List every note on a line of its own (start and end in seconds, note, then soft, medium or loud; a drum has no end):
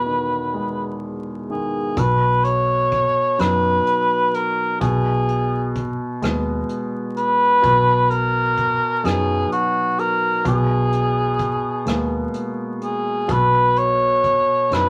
0.00 1.92 E2 soft
0.00 1.45 B2 soft
0.00 0.97 B4 medium
0.06 1.48 D#3 soft
0.54 1.93 G#3 soft
1.50 1.96 D#3 soft
1.50 2.00 G#4 medium
1.97 3.14 B1 medium
1.97 4.77 B2 medium
1.97 2.46 B4 medium
1.97 kick medium
1.97 closed hi-hat medium
2.44 3.42 C#5 medium
2.44 closed hi-hat soft
2.92 kick medium
2.92 closed hi-hat soft
3.38 3.78 F#2 medium
3.38 4.77 F#3 soft
3.38 4.77 B3 soft
3.38 4.77 D#4 soft
3.38 4.36 B4 medium
3.38 cross-stick medium
3.38 closed hi-hat medium
3.87 closed hi-hat soft
4.34 4.80 A#4 medium
4.34 closed hi-hat soft
4.80 5.98 B1 medium
4.80 7.59 B2 medium
4.80 5.83 G#4 medium
4.80 kick medium
4.80 closed hi-hat medium
5.29 closed hi-hat soft
5.76 kick medium
5.76 closed hi-hat soft
6.22 6.61 D#2 medium
6.22 7.59 G#3 soft
6.22 7.59 B3 soft
6.22 cross-stick medium
6.22 closed hi-hat medium
6.69 closed hi-hat soft
7.17 8.11 B4 loud
7.17 closed hi-hat soft
7.62 8.80 B1 medium
7.62 10.40 B2 medium
7.62 kick medium
7.62 closed hi-hat medium
8.10 9.06 A#4 medium
8.10 closed hi-hat soft
8.58 kick medium
8.58 closed hi-hat soft
9.04 9.43 F#2 medium
9.04 10.41 F#3 soft
9.04 10.41 B3 soft
9.04 10.41 D#4 soft
9.04 9.51 G#4 medium
9.04 cross-stick medium
9.04 closed hi-hat medium
9.52 10.01 F#4 medium
9.52 closed hi-hat soft
9.99 10.46 A#4 medium
9.99 closed hi-hat soft
10.45 11.62 B1 medium
10.45 13.25 B2 medium
10.45 12.31 G#4 medium
10.45 kick medium
10.45 closed hi-hat medium
10.92 closed hi-hat medium
11.39 kick medium
11.39 closed hi-hat soft
11.86 12.25 D#2 medium
11.86 13.24 G#3 soft
11.86 13.25 A#3 soft
11.86 13.25 B3 soft
11.86 cross-stick medium
11.86 closed hi-hat medium
12.34 closed hi-hat soft
12.81 13.33 G#4 medium
12.81 closed hi-hat soft
13.28 14.46 B1 medium
13.28 14.89 B2 medium
13.28 13.80 B4 medium
13.28 kick medium
13.28 closed hi-hat medium
13.76 14.75 C#5 medium
13.76 closed hi-hat soft
14.24 kick medium
14.24 closed hi-hat soft
14.71 14.89 F#2 medium
14.71 14.89 F#3 soft
14.71 14.89 B3 soft
14.71 14.89 D#4 soft
14.71 14.89 B4 medium
14.71 cross-stick medium
14.71 closed hi-hat medium